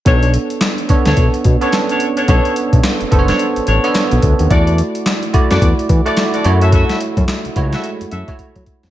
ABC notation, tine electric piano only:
X:1
M:4/4
L:1/16
Q:"Swing 16ths" 1/4=108
K:Bm
V:1 name="Tine electric piano"
[B,DAc]4 z2 [B,DAc]4 z [B,CDAc]4 z | [B,DAc]4 z2 [B,DA=c^c]4 z [B,DAc]4 z | [A,EFd]4 z2 [A,EFd]4 z [A,EFd]3 [A,EFc]2- | [A,EFc]4 z2 [^G,A,EFc]4 z [A,EFc]4 z |]